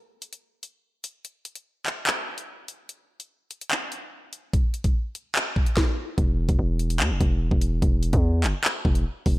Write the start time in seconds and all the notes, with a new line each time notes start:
0.22 closed hi-hat
0.33 closed hi-hat
0.63 closed hi-hat
1.04 closed hi-hat
1.25 closed hi-hat
1.45 closed hi-hat
1.55 closed hi-hat
1.86 clap, closed hi-hat
2.07 clap, closed hi-hat
2.38 closed hi-hat
2.68 closed hi-hat
2.89 closed hi-hat
3.20 closed hi-hat
3.51 closed hi-hat
3.61 closed hi-hat
3.71 clap
3.92 closed hi-hat
4.33 closed hi-hat
4.53 kick, closed hi-hat
4.74 closed hi-hat
4.84 kick, closed hi-hat
5.15 closed hi-hat
5.36 clap, closed hi-hat
5.56 kick
5.66 closed hi-hat
5.77 kick, snare
6.18 E1, kick, closed hi-hat
6.49 E1, kick, closed hi-hat
6.59 E1
6.79 closed hi-hat
6.90 closed hi-hat
7.00 E2, clap
7.10 E1
7.21 E1, kick, closed hi-hat
7.51 E1, kick
7.61 closed hi-hat
7.82 E1, kick, closed hi-hat
8.03 closed hi-hat
8.13 E2, kick, closed hi-hat
8.44 F#1, clap, closed hi-hat
8.64 clap, closed hi-hat
8.85 E1, kick
8.95 closed hi-hat
9.26 E1, kick, open hi-hat